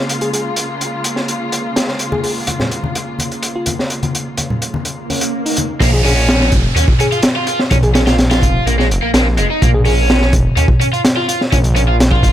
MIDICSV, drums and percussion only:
0, 0, Header, 1, 2, 480
1, 0, Start_track
1, 0, Key_signature, -5, "minor"
1, 0, Tempo, 476190
1, 95, Time_signature, 4, 2, 24, 8
1, 12424, End_track
2, 0, Start_track
2, 0, Title_t, "Drums"
2, 94, Note_on_c, 9, 42, 83
2, 195, Note_off_c, 9, 42, 0
2, 212, Note_on_c, 9, 42, 43
2, 313, Note_off_c, 9, 42, 0
2, 337, Note_on_c, 9, 42, 61
2, 438, Note_off_c, 9, 42, 0
2, 569, Note_on_c, 9, 42, 81
2, 670, Note_off_c, 9, 42, 0
2, 816, Note_on_c, 9, 42, 64
2, 917, Note_off_c, 9, 42, 0
2, 1050, Note_on_c, 9, 42, 84
2, 1151, Note_off_c, 9, 42, 0
2, 1171, Note_on_c, 9, 38, 39
2, 1272, Note_off_c, 9, 38, 0
2, 1294, Note_on_c, 9, 42, 65
2, 1394, Note_off_c, 9, 42, 0
2, 1535, Note_on_c, 9, 42, 74
2, 1636, Note_off_c, 9, 42, 0
2, 1777, Note_on_c, 9, 38, 95
2, 1779, Note_on_c, 9, 42, 77
2, 1877, Note_off_c, 9, 38, 0
2, 1879, Note_off_c, 9, 42, 0
2, 1892, Note_on_c, 9, 38, 43
2, 1993, Note_off_c, 9, 38, 0
2, 2008, Note_on_c, 9, 42, 80
2, 2108, Note_off_c, 9, 42, 0
2, 2138, Note_on_c, 9, 63, 87
2, 2239, Note_off_c, 9, 63, 0
2, 2254, Note_on_c, 9, 46, 68
2, 2355, Note_off_c, 9, 46, 0
2, 2490, Note_on_c, 9, 42, 88
2, 2500, Note_on_c, 9, 63, 65
2, 2591, Note_off_c, 9, 42, 0
2, 2600, Note_off_c, 9, 63, 0
2, 2617, Note_on_c, 9, 38, 47
2, 2617, Note_on_c, 9, 64, 71
2, 2717, Note_off_c, 9, 38, 0
2, 2718, Note_off_c, 9, 64, 0
2, 2736, Note_on_c, 9, 42, 65
2, 2837, Note_off_c, 9, 42, 0
2, 2859, Note_on_c, 9, 63, 83
2, 2959, Note_off_c, 9, 63, 0
2, 2977, Note_on_c, 9, 42, 79
2, 3078, Note_off_c, 9, 42, 0
2, 3212, Note_on_c, 9, 63, 62
2, 3222, Note_on_c, 9, 42, 66
2, 3313, Note_off_c, 9, 63, 0
2, 3323, Note_off_c, 9, 42, 0
2, 3342, Note_on_c, 9, 42, 39
2, 3442, Note_off_c, 9, 42, 0
2, 3453, Note_on_c, 9, 42, 79
2, 3554, Note_off_c, 9, 42, 0
2, 3689, Note_on_c, 9, 42, 68
2, 3699, Note_on_c, 9, 63, 83
2, 3790, Note_off_c, 9, 42, 0
2, 3800, Note_off_c, 9, 63, 0
2, 3823, Note_on_c, 9, 38, 42
2, 3924, Note_off_c, 9, 38, 0
2, 3931, Note_on_c, 9, 42, 75
2, 4032, Note_off_c, 9, 42, 0
2, 4059, Note_on_c, 9, 42, 38
2, 4062, Note_on_c, 9, 63, 88
2, 4160, Note_off_c, 9, 42, 0
2, 4163, Note_off_c, 9, 63, 0
2, 4181, Note_on_c, 9, 42, 63
2, 4281, Note_off_c, 9, 42, 0
2, 4410, Note_on_c, 9, 42, 74
2, 4419, Note_on_c, 9, 63, 62
2, 4510, Note_off_c, 9, 42, 0
2, 4520, Note_off_c, 9, 63, 0
2, 4539, Note_on_c, 9, 64, 75
2, 4640, Note_off_c, 9, 64, 0
2, 4655, Note_on_c, 9, 42, 64
2, 4756, Note_off_c, 9, 42, 0
2, 4777, Note_on_c, 9, 63, 88
2, 4878, Note_off_c, 9, 63, 0
2, 4889, Note_on_c, 9, 42, 66
2, 4989, Note_off_c, 9, 42, 0
2, 5140, Note_on_c, 9, 46, 72
2, 5141, Note_on_c, 9, 63, 58
2, 5241, Note_off_c, 9, 46, 0
2, 5242, Note_off_c, 9, 63, 0
2, 5253, Note_on_c, 9, 42, 76
2, 5354, Note_off_c, 9, 42, 0
2, 5503, Note_on_c, 9, 46, 67
2, 5604, Note_off_c, 9, 46, 0
2, 5610, Note_on_c, 9, 42, 62
2, 5626, Note_on_c, 9, 63, 84
2, 5711, Note_off_c, 9, 42, 0
2, 5726, Note_off_c, 9, 63, 0
2, 5851, Note_on_c, 9, 36, 116
2, 5851, Note_on_c, 9, 49, 98
2, 5864, Note_on_c, 9, 42, 91
2, 5952, Note_off_c, 9, 36, 0
2, 5952, Note_off_c, 9, 49, 0
2, 5965, Note_off_c, 9, 42, 0
2, 6097, Note_on_c, 9, 46, 84
2, 6198, Note_off_c, 9, 46, 0
2, 6337, Note_on_c, 9, 38, 115
2, 6340, Note_on_c, 9, 42, 80
2, 6438, Note_off_c, 9, 38, 0
2, 6441, Note_off_c, 9, 42, 0
2, 6455, Note_on_c, 9, 38, 57
2, 6556, Note_off_c, 9, 38, 0
2, 6568, Note_on_c, 9, 42, 62
2, 6578, Note_on_c, 9, 36, 87
2, 6669, Note_off_c, 9, 42, 0
2, 6678, Note_off_c, 9, 36, 0
2, 6819, Note_on_c, 9, 42, 85
2, 6920, Note_off_c, 9, 42, 0
2, 6934, Note_on_c, 9, 36, 94
2, 7035, Note_off_c, 9, 36, 0
2, 7054, Note_on_c, 9, 42, 68
2, 7155, Note_off_c, 9, 42, 0
2, 7178, Note_on_c, 9, 42, 41
2, 7279, Note_off_c, 9, 42, 0
2, 7282, Note_on_c, 9, 42, 95
2, 7290, Note_on_c, 9, 38, 119
2, 7383, Note_off_c, 9, 42, 0
2, 7391, Note_off_c, 9, 38, 0
2, 7528, Note_on_c, 9, 42, 76
2, 7629, Note_off_c, 9, 42, 0
2, 7655, Note_on_c, 9, 38, 47
2, 7755, Note_off_c, 9, 38, 0
2, 7769, Note_on_c, 9, 42, 85
2, 7773, Note_on_c, 9, 36, 120
2, 7870, Note_off_c, 9, 42, 0
2, 7874, Note_off_c, 9, 36, 0
2, 7891, Note_on_c, 9, 42, 43
2, 7992, Note_off_c, 9, 42, 0
2, 8013, Note_on_c, 9, 38, 114
2, 8013, Note_on_c, 9, 42, 85
2, 8114, Note_off_c, 9, 38, 0
2, 8114, Note_off_c, 9, 42, 0
2, 8133, Note_on_c, 9, 42, 74
2, 8134, Note_on_c, 9, 38, 114
2, 8234, Note_off_c, 9, 42, 0
2, 8235, Note_off_c, 9, 38, 0
2, 8250, Note_on_c, 9, 42, 76
2, 8252, Note_on_c, 9, 38, 115
2, 8350, Note_off_c, 9, 42, 0
2, 8353, Note_off_c, 9, 38, 0
2, 8375, Note_on_c, 9, 42, 76
2, 8380, Note_on_c, 9, 38, 114
2, 8476, Note_off_c, 9, 42, 0
2, 8481, Note_off_c, 9, 38, 0
2, 8493, Note_on_c, 9, 36, 92
2, 8496, Note_on_c, 9, 42, 68
2, 8594, Note_off_c, 9, 36, 0
2, 8597, Note_off_c, 9, 42, 0
2, 8740, Note_on_c, 9, 42, 81
2, 8841, Note_off_c, 9, 42, 0
2, 8865, Note_on_c, 9, 38, 43
2, 8965, Note_off_c, 9, 38, 0
2, 8984, Note_on_c, 9, 42, 76
2, 9085, Note_off_c, 9, 42, 0
2, 9213, Note_on_c, 9, 38, 117
2, 9213, Note_on_c, 9, 42, 100
2, 9314, Note_off_c, 9, 38, 0
2, 9314, Note_off_c, 9, 42, 0
2, 9450, Note_on_c, 9, 42, 76
2, 9551, Note_off_c, 9, 42, 0
2, 9698, Note_on_c, 9, 42, 90
2, 9699, Note_on_c, 9, 36, 103
2, 9799, Note_off_c, 9, 42, 0
2, 9800, Note_off_c, 9, 36, 0
2, 9930, Note_on_c, 9, 46, 79
2, 10031, Note_off_c, 9, 46, 0
2, 10179, Note_on_c, 9, 38, 121
2, 10182, Note_on_c, 9, 42, 89
2, 10280, Note_off_c, 9, 38, 0
2, 10282, Note_off_c, 9, 42, 0
2, 10294, Note_on_c, 9, 38, 57
2, 10395, Note_off_c, 9, 38, 0
2, 10412, Note_on_c, 9, 42, 68
2, 10414, Note_on_c, 9, 36, 102
2, 10513, Note_off_c, 9, 42, 0
2, 10515, Note_off_c, 9, 36, 0
2, 10653, Note_on_c, 9, 42, 83
2, 10754, Note_off_c, 9, 42, 0
2, 10768, Note_on_c, 9, 36, 105
2, 10868, Note_off_c, 9, 36, 0
2, 10898, Note_on_c, 9, 42, 69
2, 10999, Note_off_c, 9, 42, 0
2, 11023, Note_on_c, 9, 42, 39
2, 11124, Note_off_c, 9, 42, 0
2, 11134, Note_on_c, 9, 38, 125
2, 11136, Note_on_c, 9, 42, 98
2, 11234, Note_off_c, 9, 38, 0
2, 11237, Note_off_c, 9, 42, 0
2, 11378, Note_on_c, 9, 42, 68
2, 11479, Note_off_c, 9, 42, 0
2, 11503, Note_on_c, 9, 38, 44
2, 11604, Note_off_c, 9, 38, 0
2, 11616, Note_on_c, 9, 42, 83
2, 11618, Note_on_c, 9, 36, 108
2, 11716, Note_off_c, 9, 42, 0
2, 11719, Note_off_c, 9, 36, 0
2, 11734, Note_on_c, 9, 42, 49
2, 11834, Note_off_c, 9, 42, 0
2, 11856, Note_on_c, 9, 42, 71
2, 11957, Note_off_c, 9, 42, 0
2, 12099, Note_on_c, 9, 42, 93
2, 12100, Note_on_c, 9, 38, 112
2, 12200, Note_off_c, 9, 42, 0
2, 12201, Note_off_c, 9, 38, 0
2, 12211, Note_on_c, 9, 36, 96
2, 12312, Note_off_c, 9, 36, 0
2, 12329, Note_on_c, 9, 36, 101
2, 12332, Note_on_c, 9, 42, 75
2, 12424, Note_off_c, 9, 36, 0
2, 12424, Note_off_c, 9, 42, 0
2, 12424, End_track
0, 0, End_of_file